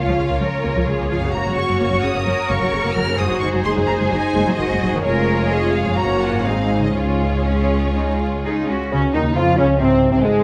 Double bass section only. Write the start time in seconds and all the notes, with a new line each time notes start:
0.07 C#2
0.18 C#2
0.30 C#2
0.41 C#2
0.65 C#2
0.76 C#2
0.88 C#2
0.99 C#2
1.12 C#2
1.22 C#2
1.34 F#1
1.46 F#1
1.57 F#1
1.70 F#1
1.81 F#1
1.92 F#1
2.03 F#1
2.15 F#1
2.27 F#1
2.50 F#1
2.62 F#1
2.73 F#1
2.85 F#1
2.97 F#1
3.08 F#1
3.19 F#1
3.31 F#1
3.43 F#1
3.54 F#1
3.65 F#1
3.77 F#1
3.88 F#1
4.00 F#1
4.13 F#1
4.35 F#1
4.47 F#1
4.59 F#1
4.70 F#1
4.81 F#1
4.93 F#1
5.05 F1
5.98 F#1
6.46 G#1
6.96 C#2
8.93 C#2
9.15 D#2
9.37 F2
9.58 C#2
9.80 C2
10.12 C2
10.24 G#1